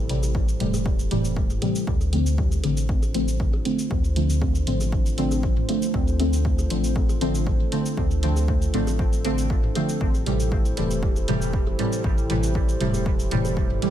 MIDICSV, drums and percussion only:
0, 0, Header, 1, 2, 480
1, 0, Start_track
1, 0, Key_signature, -1, "minor"
1, 0, Tempo, 508475
1, 1768, Time_signature, 4, 2, 24, 8
1, 13123, End_track
2, 0, Start_track
2, 0, Title_t, "Drums"
2, 89, Note_on_c, 9, 42, 82
2, 184, Note_off_c, 9, 42, 0
2, 217, Note_on_c, 9, 61, 43
2, 218, Note_on_c, 9, 69, 52
2, 312, Note_off_c, 9, 61, 0
2, 312, Note_off_c, 9, 69, 0
2, 328, Note_on_c, 9, 36, 102
2, 423, Note_off_c, 9, 36, 0
2, 458, Note_on_c, 9, 69, 40
2, 552, Note_off_c, 9, 69, 0
2, 568, Note_on_c, 9, 45, 93
2, 569, Note_on_c, 9, 42, 84
2, 662, Note_off_c, 9, 45, 0
2, 664, Note_off_c, 9, 42, 0
2, 697, Note_on_c, 9, 61, 78
2, 697, Note_on_c, 9, 69, 48
2, 792, Note_off_c, 9, 61, 0
2, 792, Note_off_c, 9, 69, 0
2, 808, Note_on_c, 9, 36, 117
2, 903, Note_off_c, 9, 36, 0
2, 937, Note_on_c, 9, 69, 39
2, 1031, Note_off_c, 9, 69, 0
2, 1049, Note_on_c, 9, 42, 86
2, 1049, Note_on_c, 9, 61, 42
2, 1143, Note_off_c, 9, 42, 0
2, 1143, Note_off_c, 9, 61, 0
2, 1177, Note_on_c, 9, 69, 50
2, 1271, Note_off_c, 9, 69, 0
2, 1288, Note_on_c, 9, 36, 100
2, 1383, Note_off_c, 9, 36, 0
2, 1417, Note_on_c, 9, 69, 29
2, 1418, Note_on_c, 9, 45, 82
2, 1511, Note_off_c, 9, 69, 0
2, 1512, Note_off_c, 9, 45, 0
2, 1528, Note_on_c, 9, 42, 79
2, 1529, Note_on_c, 9, 61, 76
2, 1623, Note_off_c, 9, 42, 0
2, 1623, Note_off_c, 9, 61, 0
2, 1657, Note_on_c, 9, 69, 52
2, 1751, Note_off_c, 9, 69, 0
2, 1768, Note_on_c, 9, 36, 117
2, 1863, Note_off_c, 9, 36, 0
2, 1897, Note_on_c, 9, 69, 29
2, 1992, Note_off_c, 9, 69, 0
2, 2009, Note_on_c, 9, 42, 84
2, 2009, Note_on_c, 9, 61, 45
2, 2103, Note_off_c, 9, 42, 0
2, 2103, Note_off_c, 9, 61, 0
2, 2137, Note_on_c, 9, 69, 52
2, 2231, Note_off_c, 9, 69, 0
2, 2248, Note_on_c, 9, 36, 106
2, 2343, Note_off_c, 9, 36, 0
2, 2377, Note_on_c, 9, 69, 41
2, 2471, Note_off_c, 9, 69, 0
2, 2488, Note_on_c, 9, 42, 84
2, 2489, Note_on_c, 9, 61, 77
2, 2582, Note_off_c, 9, 42, 0
2, 2583, Note_off_c, 9, 61, 0
2, 2616, Note_on_c, 9, 69, 49
2, 2711, Note_off_c, 9, 69, 0
2, 2728, Note_on_c, 9, 36, 124
2, 2823, Note_off_c, 9, 36, 0
2, 2857, Note_on_c, 9, 61, 45
2, 2857, Note_on_c, 9, 69, 41
2, 2951, Note_off_c, 9, 61, 0
2, 2951, Note_off_c, 9, 69, 0
2, 2969, Note_on_c, 9, 42, 85
2, 3063, Note_off_c, 9, 42, 0
2, 3097, Note_on_c, 9, 69, 50
2, 3191, Note_off_c, 9, 69, 0
2, 3208, Note_on_c, 9, 36, 102
2, 3303, Note_off_c, 9, 36, 0
2, 3337, Note_on_c, 9, 61, 82
2, 3431, Note_off_c, 9, 61, 0
2, 3449, Note_on_c, 9, 42, 81
2, 3543, Note_off_c, 9, 42, 0
2, 3577, Note_on_c, 9, 69, 51
2, 3671, Note_off_c, 9, 69, 0
2, 3688, Note_on_c, 9, 36, 122
2, 3688, Note_on_c, 9, 61, 47
2, 3783, Note_off_c, 9, 36, 0
2, 3783, Note_off_c, 9, 61, 0
2, 3818, Note_on_c, 9, 69, 28
2, 3912, Note_off_c, 9, 69, 0
2, 3929, Note_on_c, 9, 42, 88
2, 4023, Note_off_c, 9, 42, 0
2, 4057, Note_on_c, 9, 69, 52
2, 4152, Note_off_c, 9, 69, 0
2, 4168, Note_on_c, 9, 36, 112
2, 4169, Note_on_c, 9, 61, 80
2, 4263, Note_off_c, 9, 36, 0
2, 4263, Note_off_c, 9, 61, 0
2, 4297, Note_on_c, 9, 69, 41
2, 4391, Note_off_c, 9, 69, 0
2, 4409, Note_on_c, 9, 42, 91
2, 4409, Note_on_c, 9, 45, 97
2, 4503, Note_off_c, 9, 42, 0
2, 4503, Note_off_c, 9, 45, 0
2, 4537, Note_on_c, 9, 69, 51
2, 4538, Note_on_c, 9, 61, 47
2, 4632, Note_off_c, 9, 61, 0
2, 4632, Note_off_c, 9, 69, 0
2, 4648, Note_on_c, 9, 36, 127
2, 4743, Note_off_c, 9, 36, 0
2, 4777, Note_on_c, 9, 69, 43
2, 4872, Note_off_c, 9, 69, 0
2, 4888, Note_on_c, 9, 42, 93
2, 4983, Note_off_c, 9, 42, 0
2, 5017, Note_on_c, 9, 61, 84
2, 5017, Note_on_c, 9, 69, 54
2, 5111, Note_off_c, 9, 61, 0
2, 5112, Note_off_c, 9, 69, 0
2, 5128, Note_on_c, 9, 36, 106
2, 5223, Note_off_c, 9, 36, 0
2, 5257, Note_on_c, 9, 45, 85
2, 5351, Note_off_c, 9, 45, 0
2, 5369, Note_on_c, 9, 42, 90
2, 5369, Note_on_c, 9, 61, 46
2, 5463, Note_off_c, 9, 42, 0
2, 5464, Note_off_c, 9, 61, 0
2, 5497, Note_on_c, 9, 69, 52
2, 5592, Note_off_c, 9, 69, 0
2, 5608, Note_on_c, 9, 36, 122
2, 5702, Note_off_c, 9, 36, 0
2, 5738, Note_on_c, 9, 69, 29
2, 5832, Note_off_c, 9, 69, 0
2, 5848, Note_on_c, 9, 61, 84
2, 5849, Note_on_c, 9, 42, 91
2, 5943, Note_off_c, 9, 42, 0
2, 5943, Note_off_c, 9, 61, 0
2, 5977, Note_on_c, 9, 69, 51
2, 6072, Note_off_c, 9, 69, 0
2, 6088, Note_on_c, 9, 36, 111
2, 6182, Note_off_c, 9, 36, 0
2, 6217, Note_on_c, 9, 61, 48
2, 6217, Note_on_c, 9, 69, 41
2, 6311, Note_off_c, 9, 61, 0
2, 6312, Note_off_c, 9, 69, 0
2, 6328, Note_on_c, 9, 42, 91
2, 6423, Note_off_c, 9, 42, 0
2, 6458, Note_on_c, 9, 69, 50
2, 6552, Note_off_c, 9, 69, 0
2, 6568, Note_on_c, 9, 36, 127
2, 6662, Note_off_c, 9, 36, 0
2, 6696, Note_on_c, 9, 61, 82
2, 6697, Note_on_c, 9, 69, 42
2, 6791, Note_off_c, 9, 61, 0
2, 6792, Note_off_c, 9, 69, 0
2, 6809, Note_on_c, 9, 42, 91
2, 6903, Note_off_c, 9, 42, 0
2, 6937, Note_on_c, 9, 69, 52
2, 7032, Note_off_c, 9, 69, 0
2, 7047, Note_on_c, 9, 61, 47
2, 7048, Note_on_c, 9, 36, 112
2, 7141, Note_off_c, 9, 61, 0
2, 7142, Note_off_c, 9, 36, 0
2, 7288, Note_on_c, 9, 42, 89
2, 7382, Note_off_c, 9, 42, 0
2, 7417, Note_on_c, 9, 69, 52
2, 7511, Note_off_c, 9, 69, 0
2, 7528, Note_on_c, 9, 36, 121
2, 7528, Note_on_c, 9, 61, 84
2, 7622, Note_off_c, 9, 36, 0
2, 7622, Note_off_c, 9, 61, 0
2, 7656, Note_on_c, 9, 69, 28
2, 7751, Note_off_c, 9, 69, 0
2, 7768, Note_on_c, 9, 42, 89
2, 7862, Note_off_c, 9, 42, 0
2, 7896, Note_on_c, 9, 61, 47
2, 7897, Note_on_c, 9, 69, 50
2, 7991, Note_off_c, 9, 61, 0
2, 7991, Note_off_c, 9, 69, 0
2, 8008, Note_on_c, 9, 36, 107
2, 8102, Note_off_c, 9, 36, 0
2, 8137, Note_on_c, 9, 69, 39
2, 8231, Note_off_c, 9, 69, 0
2, 8247, Note_on_c, 9, 45, 88
2, 8248, Note_on_c, 9, 42, 91
2, 8342, Note_off_c, 9, 45, 0
2, 8343, Note_off_c, 9, 42, 0
2, 8376, Note_on_c, 9, 61, 82
2, 8377, Note_on_c, 9, 69, 48
2, 8470, Note_off_c, 9, 61, 0
2, 8471, Note_off_c, 9, 69, 0
2, 8488, Note_on_c, 9, 36, 127
2, 8582, Note_off_c, 9, 36, 0
2, 8617, Note_on_c, 9, 69, 39
2, 8711, Note_off_c, 9, 69, 0
2, 8728, Note_on_c, 9, 42, 90
2, 8728, Note_on_c, 9, 61, 47
2, 8823, Note_off_c, 9, 42, 0
2, 8823, Note_off_c, 9, 61, 0
2, 8857, Note_on_c, 9, 69, 49
2, 8951, Note_off_c, 9, 69, 0
2, 8968, Note_on_c, 9, 36, 106
2, 9062, Note_off_c, 9, 36, 0
2, 9097, Note_on_c, 9, 45, 81
2, 9191, Note_off_c, 9, 45, 0
2, 9208, Note_on_c, 9, 42, 89
2, 9208, Note_on_c, 9, 61, 82
2, 9302, Note_off_c, 9, 42, 0
2, 9303, Note_off_c, 9, 61, 0
2, 9337, Note_on_c, 9, 69, 50
2, 9431, Note_off_c, 9, 69, 0
2, 9448, Note_on_c, 9, 36, 116
2, 9542, Note_off_c, 9, 36, 0
2, 9577, Note_on_c, 9, 69, 27
2, 9672, Note_off_c, 9, 69, 0
2, 9689, Note_on_c, 9, 42, 83
2, 9690, Note_on_c, 9, 61, 45
2, 9784, Note_off_c, 9, 42, 0
2, 9784, Note_off_c, 9, 61, 0
2, 9817, Note_on_c, 9, 69, 49
2, 9912, Note_off_c, 9, 69, 0
2, 9928, Note_on_c, 9, 36, 106
2, 10023, Note_off_c, 9, 36, 0
2, 10057, Note_on_c, 9, 69, 37
2, 10152, Note_off_c, 9, 69, 0
2, 10168, Note_on_c, 9, 42, 86
2, 10168, Note_on_c, 9, 61, 77
2, 10262, Note_off_c, 9, 61, 0
2, 10263, Note_off_c, 9, 42, 0
2, 10297, Note_on_c, 9, 69, 46
2, 10391, Note_off_c, 9, 69, 0
2, 10409, Note_on_c, 9, 36, 123
2, 10503, Note_off_c, 9, 36, 0
2, 10537, Note_on_c, 9, 61, 44
2, 10537, Note_on_c, 9, 69, 38
2, 10631, Note_off_c, 9, 69, 0
2, 10632, Note_off_c, 9, 61, 0
2, 10648, Note_on_c, 9, 42, 85
2, 10743, Note_off_c, 9, 42, 0
2, 10778, Note_on_c, 9, 69, 46
2, 10872, Note_off_c, 9, 69, 0
2, 10888, Note_on_c, 9, 36, 103
2, 10983, Note_off_c, 9, 36, 0
2, 11017, Note_on_c, 9, 61, 81
2, 11112, Note_off_c, 9, 61, 0
2, 11129, Note_on_c, 9, 42, 84
2, 11223, Note_off_c, 9, 42, 0
2, 11258, Note_on_c, 9, 69, 48
2, 11352, Note_off_c, 9, 69, 0
2, 11368, Note_on_c, 9, 36, 117
2, 11370, Note_on_c, 9, 61, 45
2, 11463, Note_off_c, 9, 36, 0
2, 11464, Note_off_c, 9, 61, 0
2, 11498, Note_on_c, 9, 69, 26
2, 11592, Note_off_c, 9, 69, 0
2, 11609, Note_on_c, 9, 42, 81
2, 11703, Note_off_c, 9, 42, 0
2, 11737, Note_on_c, 9, 69, 51
2, 11832, Note_off_c, 9, 69, 0
2, 11848, Note_on_c, 9, 36, 104
2, 11849, Note_on_c, 9, 61, 78
2, 11942, Note_off_c, 9, 36, 0
2, 11943, Note_off_c, 9, 61, 0
2, 11977, Note_on_c, 9, 69, 38
2, 12072, Note_off_c, 9, 69, 0
2, 12088, Note_on_c, 9, 42, 86
2, 12088, Note_on_c, 9, 45, 88
2, 12182, Note_off_c, 9, 42, 0
2, 12182, Note_off_c, 9, 45, 0
2, 12217, Note_on_c, 9, 69, 46
2, 12218, Note_on_c, 9, 61, 44
2, 12311, Note_off_c, 9, 69, 0
2, 12312, Note_off_c, 9, 61, 0
2, 12328, Note_on_c, 9, 36, 119
2, 12422, Note_off_c, 9, 36, 0
2, 12457, Note_on_c, 9, 69, 38
2, 12551, Note_off_c, 9, 69, 0
2, 12568, Note_on_c, 9, 42, 86
2, 12663, Note_off_c, 9, 42, 0
2, 12696, Note_on_c, 9, 61, 78
2, 12697, Note_on_c, 9, 69, 48
2, 12791, Note_off_c, 9, 61, 0
2, 12791, Note_off_c, 9, 69, 0
2, 12808, Note_on_c, 9, 36, 106
2, 12902, Note_off_c, 9, 36, 0
2, 12936, Note_on_c, 9, 45, 81
2, 13031, Note_off_c, 9, 45, 0
2, 13048, Note_on_c, 9, 42, 82
2, 13048, Note_on_c, 9, 61, 45
2, 13123, Note_off_c, 9, 42, 0
2, 13123, Note_off_c, 9, 61, 0
2, 13123, End_track
0, 0, End_of_file